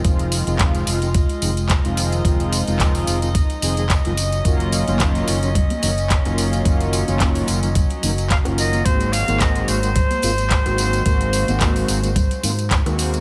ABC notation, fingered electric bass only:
X:1
M:4/4
L:1/16
Q:"Swing 16ths" 1/4=109
K:Ebdor
V:1 name="Fingered electric bass" clef=bass
F,,,3 F,,,3 F,,,3 z F,,,3 F,,,3 | F,,,3 F,,,3 F,,,3 z F,,,3 G,,,3 | G,,,3 G,,,3 G,,,3 z G,,,3 G,,,3 | G,,,3 G,,,3 G,,,3 z G,,,3 G,,,3 |
A,,,3 A,,,3 A,,,3 z A,,,3 A,,,3 | A,,,3 A,,,3 A,,,3 z A,,3 E,,3 |]